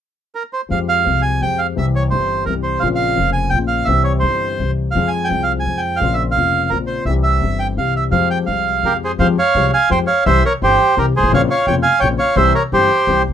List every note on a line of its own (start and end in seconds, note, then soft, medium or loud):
0.35 0.43 A#4 medium
0.53 0.61 C5 medium
0.69 1.04 F2 medium
0.69 1.05 F2 soft
0.69 0.70 F3 soft
0.69 1.03 F3 soft
0.69 1.04 G#3 soft
0.69 1.05 C4 soft
0.69 0.79 F5 medium
0.73 1.06 G4 soft
0.89 1.22 F5 medium
1.05 1.40 C2 soft
1.05 1.40 C3 soft
1.05 1.38 F3 soft
1.05 1.40 G#3 soft
1.05 1.41 C4 soft
1.05 1.41 G4 soft
1.22 1.41 G#5 medium
1.41 1.76 F2 soft
1.41 1.76 F3 soft
1.41 1.75 G#3 soft
1.41 1.76 C4 soft
1.41 1.76 G4 soft
1.41 1.60 G5 medium
1.59 1.67 F5 medium
1.75 2.10 C2 medium
1.75 2.11 C2 medium
1.75 2.10 C3 soft
1.75 2.09 E3 soft
1.75 2.10 G3 soft
1.75 2.11 C4 soft
1.75 2.12 G4 soft
1.75 1.86 E5 medium
1.96 2.03 C#5 medium
2.10 2.46 G1 soft
2.10 2.45 G2 soft
2.10 2.45 E3 soft
2.10 2.45 G3 soft
2.10 2.46 C4 soft
2.10 2.47 G4 soft
2.10 2.44 C5 medium
2.46 2.80 C2 soft
2.46 2.81 C2 soft
2.46 2.81 C3 soft
2.46 2.80 E3 soft
2.46 2.81 G3 soft
2.46 2.81 C4 soft
2.46 2.54 A#4 medium
2.50 2.82 G4 soft
2.63 2.82 C5 medium
2.80 3.16 A#1 medium
2.80 3.16 A#2 medium
2.80 3.15 C#3 soft
2.80 3.16 A#3 soft
2.80 2.88 F5 medium
2.84 3.17 C4 soft
2.84 3.17 F4 medium
2.95 3.30 F5 medium
3.16 3.51 F1 soft
3.16 3.51 F2 soft
3.16 3.50 C#3 soft
3.16 3.51 A#3 soft
3.16 3.51 C4 soft
3.16 3.52 F4 soft
3.33 3.50 G#5 medium
3.50 3.86 A#1 soft
3.50 3.87 C#3 soft
3.50 3.58 G5 medium
3.54 3.87 A#1 soft
3.54 3.87 A#2 soft
3.54 3.87 A#3 soft
3.54 3.88 C4 soft
3.54 3.88 F4 soft
3.68 3.87 F5 medium
3.85 4.21 C2 medium
3.85 4.22 C2 medium
3.85 4.22 C3 medium
3.85 4.19 E3 soft
3.85 4.21 G3 soft
3.85 4.03 E5 medium
3.89 4.22 C4 soft
3.89 4.23 G4 medium
4.04 4.12 C#5 medium
4.20 4.57 G1 soft
4.20 4.57 G2 soft
4.20 4.56 E3 soft
4.20 4.57 G3 soft
4.20 4.71 C5 medium
4.24 4.58 C4 soft
4.24 4.58 G4 soft
4.58 4.93 C2 soft
4.58 4.93 C3 soft
4.58 4.93 E3 soft
4.58 4.93 G3 soft
4.58 4.94 C4 soft
4.63 4.95 G4 soft
4.91 5.09 F5 medium
4.95 5.29 F2 medium
4.95 5.27 F3 soft
4.95 5.29 G#3 soft
4.95 5.29 C4 soft
4.95 5.30 G#4 soft
5.08 5.28 G#5 medium
5.24 5.63 F3 soft
5.24 5.43 G5 medium
5.30 5.64 C2 soft
5.30 5.64 C3 soft
5.30 5.64 G#3 soft
5.30 5.64 C4 soft
5.30 5.65 G#4 soft
5.43 5.52 F5 medium
5.60 5.81 G#5 medium
5.66 5.99 F2 soft
5.66 6.00 F2 soft
5.66 6.00 F3 soft
5.66 6.00 G#3 soft
5.66 6.01 C4 soft
5.70 6.01 G#4 soft
5.78 5.99 G5 medium
5.96 6.33 C#3 soft
5.96 6.15 F5 medium
6.01 6.34 A#1 medium
6.01 6.35 A#1 medium
6.01 6.35 A#2 medium
6.01 6.34 A#3 soft
6.01 6.35 C4 soft
6.01 6.36 F4 medium
6.14 6.23 E5 medium
6.31 6.69 C#3 soft
6.31 6.70 F5 medium
6.36 6.69 F1 soft
6.36 6.70 F1 soft
6.36 6.69 F2 soft
6.36 6.69 A#3 soft
6.36 6.70 C4 soft
6.36 6.71 F4 soft
6.70 7.04 A#1 soft
6.70 7.05 A#1 soft
6.70 7.05 A#2 soft
6.70 7.04 C#3 soft
6.70 7.05 A#3 soft
6.70 7.05 C4 soft
6.70 6.78 A#4 medium
6.74 7.06 F4 soft
6.87 7.04 C5 medium
7.05 7.39 C2 medium
7.05 7.41 C2 medium
7.05 7.41 C3 medium
7.05 7.38 E3 soft
7.05 7.39 G3 soft
7.05 7.41 C4 soft
7.05 7.14 E5 medium
7.10 7.42 G4 soft
7.23 7.60 E5 medium
7.40 7.75 G1 soft
7.40 7.76 G2 soft
7.40 7.74 E3 soft
7.40 7.75 G3 soft
7.40 7.76 C4 soft
7.44 7.77 G4 soft
7.59 7.67 G5 medium
7.76 8.11 C2 soft
7.76 8.11 C3 soft
7.76 8.10 E3 soft
7.76 8.10 G3 soft
7.76 8.11 C4 soft
7.76 8.12 G4 soft
7.76 7.94 F5 medium
7.96 8.04 E5 medium
8.10 8.46 F2 medium
8.10 8.12 F3 soft
8.10 8.44 F3 medium
8.10 8.45 G#3 soft
8.10 8.46 C4 soft
8.10 8.47 G4 medium
8.10 8.28 F5 medium
8.31 8.38 G5 medium
8.45 8.82 C2 soft
8.45 8.82 C3 soft
8.45 8.80 F3 soft
8.45 8.81 G#3 soft
8.45 8.82 C4 soft
8.45 8.97 F5 medium
8.49 8.83 G4 soft
8.83 9.17 F2 soft
8.83 9.18 F2 soft
8.83 9.18 F3 soft
8.83 9.18 G#3 soft
8.83 9.18 C4 soft
8.83 8.93 G4 medium
8.83 9.19 G4 soft
8.83 8.93 A#4 medium
9.04 9.12 G#4 medium
9.04 9.12 C5 medium
9.19 9.34 F2 medium
9.19 9.35 F2 medium
9.19 9.35 F3 medium
9.19 9.35 G#3 medium
9.19 9.35 C4 medium
9.19 9.35 G4 medium
9.19 9.27 C5 medium
9.19 9.27 F5 medium
9.39 9.71 C#5 medium
9.39 9.71 F5 medium
9.55 9.70 C2 medium
9.55 9.70 C2 soft
9.55 9.70 C3 soft
9.55 9.70 F3 soft
9.55 9.70 G#3 soft
9.55 9.71 C4 soft
9.55 9.70 G4 soft
9.73 9.90 F5 medium
9.73 9.90 G#5 medium
9.90 10.05 F2 soft
9.90 10.06 F2 medium
9.90 10.05 F3 soft
9.90 10.05 G#3 soft
9.90 10.05 C4 soft
9.90 10.05 G4 soft
9.90 9.99 C5 medium
9.90 9.99 G5 medium
10.07 10.24 C#5 medium
10.07 10.24 F5 medium
10.26 10.41 C2 medium
10.26 10.41 C3 medium
10.26 10.41 E3 medium
10.26 10.41 G3 medium
10.26 10.41 C4 medium
10.26 10.41 G4 medium
10.26 10.43 C5 medium
10.26 10.44 E5 medium
10.45 10.53 A#4 medium
10.45 10.53 C#5 medium
10.62 10.76 G1 medium
10.62 10.76 G1 soft
10.62 10.76 G2 soft
10.62 10.76 E3 soft
10.62 10.76 G3 soft
10.62 10.76 C4 soft
10.62 10.76 G4 soft
10.62 10.95 G4 medium
10.62 10.98 C5 medium
10.97 11.11 C2 soft
10.97 11.12 C2 soft
10.97 11.11 C3 soft
10.97 11.11 E3 soft
10.97 11.11 G3 soft
10.97 11.11 C4 soft
10.97 11.12 G4 soft
10.97 11.06 G4 medium
10.97 11.06 A#4 medium
11.16 11.23 G1 soft
11.16 11.22 G1 soft
11.16 11.32 G#4 medium
11.16 11.32 C5 medium
11.22 11.27 G#1 soft
11.22 11.28 G#1 medium
11.27 11.31 A1 medium
11.27 11.32 A1 medium
11.32 11.46 A#1 medium
11.32 11.47 A#1 medium
11.32 11.47 A#2 medium
11.32 11.47 C#3 medium
11.32 11.47 A#3 medium
11.32 11.47 C4 medium
11.32 11.47 F4 medium
11.32 11.42 C#5 medium
11.32 11.41 F5 medium
11.51 11.66 C#5 medium
11.51 11.66 F5 medium
11.67 11.81 F1 medium
11.67 11.82 F1 soft
11.67 11.82 F2 soft
11.67 11.82 C#3 soft
11.67 11.82 A#3 soft
11.67 11.82 C4 soft
11.67 11.82 F4 soft
11.67 11.75 C#5 medium
11.67 11.75 G5 medium
11.83 12.00 F5 medium
11.83 12.00 G#5 medium
12.00 12.16 A#1 medium
12.00 12.17 A#1 soft
12.00 12.17 C#3 soft
12.00 12.17 A#3 soft
12.00 12.17 C4 soft
12.00 12.08 C#5 medium
12.00 12.08 G5 medium
12.04 12.17 A#2 soft
12.04 12.17 F4 soft
12.18 12.35 C#5 medium
12.18 12.36 F5 medium
12.36 12.51 C2 medium
12.36 12.52 C3 medium
12.36 12.51 E3 medium
12.36 12.51 G3 medium
12.36 12.52 C4 medium
12.36 12.52 G4 medium
12.36 12.53 C5 medium
12.36 12.53 E5 medium
12.55 12.63 A#4 medium
12.55 12.63 C#5 medium
12.72 12.87 G1 soft
12.72 12.87 G1 medium
12.72 12.87 G2 soft
12.72 12.87 E3 soft
12.72 12.87 G3 soft
12.72 12.87 C4 soft
12.72 12.87 G4 soft
12.72 13.22 G4 medium
12.72 13.22 C5 medium
13.07 13.22 C2 medium
13.07 13.23 C2 soft
13.07 13.22 C3 soft
13.07 13.23 E3 soft
13.07 13.22 G3 soft
13.07 13.23 C4 soft
13.07 13.23 G4 soft
13.29 13.33 D2 soft